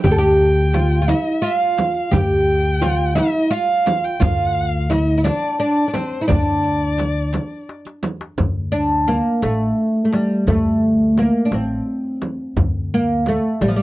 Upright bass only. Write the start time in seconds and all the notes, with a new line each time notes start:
0.04 D2
2.12 D2
4.21 D2
6.30 D2
8.38 D2
9.42 A1
10.47 D2
11.51 A1
12.57 D2
13.61 A1